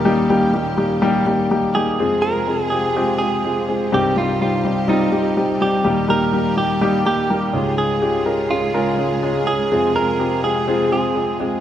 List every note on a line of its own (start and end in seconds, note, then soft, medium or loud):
0.00 1.71 D#2 medium
0.00 1.71 A#2 medium
0.00 1.95 A#2 medium
0.00 0.05 G3 medium
0.00 1.95 G3 medium
0.00 0.05 A#3 medium
0.00 1.96 C#4 medium
0.00 0.06 D#4 medium
0.00 2.00 F4 medium
0.00 0.05 G4 medium
0.00 1.46 G4 medium
0.00 1.95 G4 medium
0.00 2.01 A#4 medium
0.05 0.24 G3 medium
0.05 0.24 A#3 medium
0.05 0.24 D#4 medium
0.05 0.24 G4 loud
0.30 0.49 G3 medium
0.30 0.49 A#3 medium
0.30 0.49 D#4 medium
0.30 0.49 G4 medium
0.54 0.73 G3 medium
0.54 0.73 A#3 medium
0.54 0.73 D#4 medium
0.54 0.73 G4 medium
0.77 0.97 G3 medium
0.77 0.97 A#3 medium
0.77 0.97 D#4 medium
0.77 0.97 G4 medium
1.02 1.21 G3 loud
1.02 1.21 A#3 medium
1.02 1.21 D#4 medium
1.02 1.21 G4 loud
1.26 1.45 G3 medium
1.26 1.45 A#3 medium
1.26 1.45 D#4 medium
1.26 1.45 G4 medium
1.51 1.70 G3 medium
1.51 1.70 A#3 medium
1.51 1.70 D#4 medium
1.51 1.70 G4 medium
1.75 1.94 G3 medium
1.75 1.94 A#3 medium
1.75 1.94 D#4 medium
1.75 1.94 G4 medium
1.75 2.22 G#4 medium
1.98 3.88 F2 medium
1.98 5.81 C3 medium
1.98 3.89 C3 medium
1.98 3.90 G#3 medium
1.98 2.18 G#3 medium
1.98 2.18 C4 medium
1.98 3.90 F4 medium
1.98 2.18 F4 medium
1.98 3.90 G#4 medium
1.98 2.18 G#4 medium
2.22 2.42 G#3 medium
2.22 2.42 C4 medium
2.22 2.42 F4 medium
2.22 2.42 G#4 medium
2.22 2.70 A#4 medium
2.48 2.66 G#3 medium
2.48 2.66 C4 medium
2.48 2.66 F4 medium
2.48 2.67 G#4 medium
2.70 2.91 G#3 medium
2.70 2.91 C4 medium
2.70 2.91 F4 medium
2.70 2.91 G4 medium
2.70 3.16 G#4 medium
2.96 3.15 G#3 medium
2.96 3.15 C4 medium
2.96 3.15 F4 medium
2.96 3.15 G4 medium
3.18 3.39 G#3 medium
3.18 3.39 C4 medium
3.18 3.39 F4 medium
3.18 3.64 G#4 medium
3.18 3.39 G#4 medium
3.44 3.63 G#3 medium
3.44 3.63 C4 medium
3.44 3.63 F4 medium
3.44 3.63 G#4 medium
3.68 3.87 G#3 medium
3.68 3.87 C4 medium
3.68 3.87 F4 medium
3.68 3.87 G#4 medium
3.91 5.81 C2 medium
3.91 5.81 G2 medium
3.91 7.50 G3 medium
3.91 4.11 G3 medium
3.91 4.11 C4 medium
3.91 7.50 D#4 medium
3.91 4.11 D#4 medium
3.91 5.83 G4 medium
3.91 4.11 G4 medium
3.91 4.16 G4 medium
4.16 4.35 G3 medium
4.16 4.35 C4 medium
4.16 4.35 D#4 medium
4.16 4.35 F4 medium
4.16 4.41 F4 medium
4.41 4.60 G3 medium
4.41 4.59 C4 medium
4.41 4.60 D#4 medium
4.41 4.89 F4 medium
4.41 4.60 G4 medium
4.64 4.83 G3 medium
4.64 4.83 C4 medium
4.64 4.84 D#4 medium
4.64 4.83 G4 medium
4.88 5.07 G3 medium
4.88 5.07 C4 medium
4.88 5.07 D#4 medium
4.88 5.64 D#4 medium
4.88 5.07 F4 medium
5.12 5.31 G3 medium
5.12 5.31 C4 medium
5.12 5.31 D#4 medium
5.12 5.31 G4 medium
5.37 5.56 G3 medium
5.37 5.56 C4 medium
5.37 5.56 D#4 medium
5.37 5.56 G4 medium
5.61 5.80 G3 medium
5.61 5.80 C4 medium
5.61 5.80 D#4 medium
5.61 5.80 G4 medium
5.61 6.10 G4 medium
5.84 7.50 D#2 medium
5.84 7.52 A#2 medium
5.84 7.50 A#2 medium
5.84 6.04 G3 medium
5.84 6.04 A#3 medium
5.84 6.04 D#4 medium
5.84 6.04 G4 medium
5.84 7.52 G4 medium
6.08 6.28 G3 medium
6.08 6.28 A#3 medium
6.08 6.28 D#4 medium
6.08 6.28 G4 medium
6.08 6.57 A#4 loud
6.33 6.52 G3 medium
6.33 6.52 A#3 medium
6.33 6.52 D#4 medium
6.33 6.52 G4 medium
6.57 6.76 G3 medium
6.57 6.76 A#3 medium
6.57 6.76 D#4 medium
6.57 6.76 G4 medium
6.57 7.03 G4 medium
6.81 7.00 G3 medium
6.81 7.00 A#3 medium
6.81 7.00 D#4 medium
6.81 7.01 G4 loud
7.06 7.25 G3 medium
7.06 7.25 A#3 medium
7.06 7.25 D#4 medium
7.06 7.25 G4 medium
7.06 7.78 G4 medium
7.30 7.49 G3 medium
7.30 7.49 A#3 medium
7.30 7.49 D#4 medium
7.30 7.49 A#4 medium
7.53 9.43 C#2 medium
7.53 9.43 G#2 medium
7.53 9.69 C#3 medium
7.53 7.93 G#3 medium
7.53 11.60 G#3 medium
7.53 7.93 C#4 medium
7.53 7.93 F4 medium
7.53 9.69 F4 medium
7.53 7.93 G#4 medium
7.53 11.60 G#4 medium
7.78 8.23 G#4 medium
8.02 8.21 G#3 medium
8.02 8.21 C#4 medium
8.02 8.21 F4 medium
8.02 8.21 G4 medium
8.25 8.45 G#3 medium
8.25 8.45 C#4 medium
8.25 8.45 F4 medium
8.25 8.45 A#4 medium
8.51 8.70 G#3 medium
8.51 8.70 C#4 medium
8.51 9.50 F4 medium
8.51 8.69 F4 medium
8.51 8.70 G#4 medium
8.74 8.93 G#3 medium
8.74 8.93 C#4 medium
8.74 8.93 F4 medium
8.74 8.93 A#4 medium
8.98 9.17 G#3 medium
8.98 9.17 C#4 medium
8.98 9.18 F4 medium
8.98 9.18 G#4 medium
9.23 9.42 G#3 medium
9.23 9.42 C#4 medium
9.23 9.42 F4 medium
9.23 9.42 G#4 medium
9.47 9.66 G#3 medium
9.47 9.66 C#4 medium
9.47 9.66 F4 medium
9.47 9.95 G#4 medium
9.47 9.66 G#4 medium
9.71 11.60 F2 medium
9.71 11.60 C3 medium
9.71 9.90 G#3 medium
9.71 9.90 C4 medium
9.71 11.60 F4 medium
9.71 9.90 F4 medium
9.71 9.90 G#4 medium
9.95 10.14 G#3 medium
9.95 10.14 C4 medium
9.95 10.14 F4 medium
9.95 10.14 A#4 medium
9.95 10.41 A#4 loud
10.19 10.38 G#3 medium
10.19 10.38 C4 medium
10.19 10.38 F4 medium
10.19 10.38 G4 medium
10.44 10.63 G#3 medium
10.44 10.63 C4 medium
10.44 10.63 F4 medium
10.44 10.63 G#4 medium
10.44 10.91 G#4 medium
10.68 10.87 G#3 medium
10.68 10.87 C4 medium
10.68 10.87 F4 medium
10.68 10.87 G#4 loud
10.92 11.11 G#3 medium
10.92 11.11 C4 medium
10.92 11.11 F4 medium
10.92 11.11 G#4 medium
10.92 11.37 G#4 medium
11.15 11.35 G#3 medium
11.15 11.35 C4 medium
11.15 11.35 F4 medium
11.15 11.35 G#4 medium
11.40 11.59 G#3 medium
11.40 11.59 C4 medium
11.40 11.59 F4 medium
11.40 11.59 G#4 medium